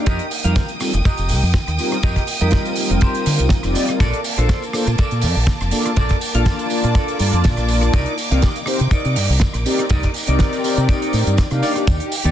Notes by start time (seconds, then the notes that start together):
0.06 F2 A#3 G4 A#4 D#5 G5 D#6, kick, closed hi-hat, tambourine
0.19 closed hi-hat
0.31 open hi-hat, tambourine
0.44 F2 G3 C4 D#4 F4 G4 A#4 F5, closed hi-hat, tambourine
0.56 kick, snare, closed hi-hat, tambourine
0.68 closed hi-hat, tambourine
0.80 G3 C4 D#4 F4 A4, cross-stick, open hi-hat, tambourine
0.93 F1, muted clean electric guitar stroke, closed hi-hat, tambourine
1.05 G4 A#4 D#5, kick, closed hi-hat, tambourine
1.17 F1, closed hi-hat, tambourine
1.29 C2, open hi-hat, tambourine
1.43 F2, tambourine
1.54 kick, snare, closed hi-hat, tambourine
1.67 D#2, cross-stick, closed hi-hat, tambourine
1.78 G3 C4 D#4 F4 A#4, muted clean electric guitar stroke, open hi-hat, tambourine
1.92 cross-stick, closed hi-hat, tambourine
2.03 F2 G4 A#4 D#5, kick, closed hi-hat, tambourine
2.16 kick, snare, closed hi-hat
2.27 open hi-hat, tambourine
2.40 F2 G3 C4 D#4 F4 G4 A#4 D#5, closed hi-hat, tambourine
2.51 kick, snare, closed hi-hat, tambourine
2.65 closed hi-hat, tambourine
2.76 G3 C4 D#4 F4 A#4, open hi-hat, tambourine
2.90 F1, muted clean electric guitar stroke, closed hi-hat, tambourine
3.01 G4 A#4 C5, kick, closed hi-hat, tambourine
3.15 closed hi-hat, tambourine
3.26 D3, open hi-hat, tambourine
3.39 C2, closed hi-hat, tambourine
3.49 kick, snare, closed hi-hat, tambourine
3.63 F1 G3 C4 D#4 F4 D5, cross-stick, closed hi-hat, tambourine
3.75 muted clean electric guitar stroke, open hi-hat, tambourine
3.88 G3 C4 D#4 F4 A#4, cross-stick, closed hi-hat, tambourine
4.00 A#1 A4 A#4 D5 A5 D6, kick, closed hi-hat, tambourine
4.13 closed hi-hat
4.24 open hi-hat, tambourine
4.38 A#1 A#3 D4 F4 A4 A#4 C5 D5, closed hi-hat, tambourine
4.49 kick, snare, closed hi-hat, tambourine
4.62 closed hi-hat, tambourine
4.73 A#3 D4 F4 A4 C5, cross-stick, open hi-hat, tambourine
4.87 A#2, muted clean electric guitar stroke, closed hi-hat, tambourine
4.98 A4 A#4 D5, kick, closed hi-hat, tambourine
5.11 A#2, closed hi-hat, tambourine
5.21 F2, open hi-hat, tambourine
5.36 A#1, tambourine
5.47 kick, snare, tambourine
5.60 F1, cross-stick, closed hi-hat, tambourine
5.71 A#3 D4 F4 A4 D5, muted clean electric guitar stroke, open hi-hat, tambourine
5.85 cross-stick, closed hi-hat, tambourine
5.96 A#1 A4 A#4 D5, kick, closed hi-hat, tambourine
6.09 kick, snare, closed hi-hat, tambourine
6.21 open hi-hat, tambourine
6.34 A#1 A#3 D4 F4 A4 A#4 D5 F5 A5, closed hi-hat, tambourine
6.45 kick, snare, closed hi-hat, tambourine
6.58 closed hi-hat, tambourine
6.70 A#3 D4 F4 D5 A5, open hi-hat, tambourine
6.84 A#2, muted clean electric guitar stroke, closed hi-hat, tambourine
6.95 A4 A#4 D5, kick, closed hi-hat, tambourine
7.08 closed hi-hat, tambourine
7.19 G2 A#3 D4 F4 D5 A5, open hi-hat, tambourine
7.32 F2, closed hi-hat, tambourine
7.44 kick, snare, closed hi-hat, tambourine
7.57 A#1, cross-stick, closed hi-hat, tambourine
7.68 muted clean electric guitar stroke, open hi-hat, tambourine
7.81 cross-stick, closed hi-hat, tambourine
7.93 C2 D#4 A#4 D5, kick, closed hi-hat, tambourine
8.06 closed hi-hat
8.18 open hi-hat, tambourine
8.31 C2 C4 D#4 G4 A#4 D5 F5, closed hi-hat, tambourine
8.42 kick, snare, closed hi-hat, tambourine
8.55 closed hi-hat, tambourine
8.66 C4 D#4 G4 A#4 C5, cross-stick, open hi-hat, tambourine
8.80 C3, muted clean electric guitar stroke, closed hi-hat, tambourine
8.91 D#4 A#4 D5, kick, closed hi-hat, tambourine
9.05 C3, closed hi-hat, tambourine
9.16 G2, open hi-hat, tambourine
9.30 C2, tambourine
9.40 kick, snare, closed hi-hat, tambourine
9.54 A#1, cross-stick, closed hi-hat, tambourine
9.65 C4 D#4 G4 A#4 D5, muted clean electric guitar stroke, open hi-hat, tambourine
9.79 cross-stick, closed hi-hat, tambourine
9.89 C2 D#4 A#4 D5, kick, closed hi-hat, tambourine
10.03 kick, snare, closed hi-hat
10.14 open hi-hat, tambourine
10.27 C2 C4 D#4 G4 A#4 D5, closed hi-hat
10.39 kick, snare, closed hi-hat, tambourine
10.53 closed hi-hat, tambourine
10.63 C4 D#4 G4 A#4 D5, open hi-hat, tambourine
10.77 C3, muted clean electric guitar stroke, closed hi-hat, tambourine
10.89 D#4 A#4 D5, kick, closed hi-hat, tambourine
11.02 closed hi-hat, tambourine
11.13 A2, open hi-hat, tambourine
11.27 G2, closed hi-hat, tambourine
11.37 kick, snare, closed hi-hat, tambourine
11.50 C3 A#3 D4 D#4 G4 F5, cross-stick, closed hi-hat, tambourine
11.63 D#4 G4 D5, open hi-hat, tambourine
11.75 A#3 D4 D#4 G4 D5, cross-stick, closed hi-hat, tambourine
11.87 D#2, kick, closed hi-hat, tambourine
12.00 closed hi-hat
12.12 open hi-hat, tambourine
12.24 D#2 A#3 D4 D#4 G4 D5, closed hi-hat, tambourine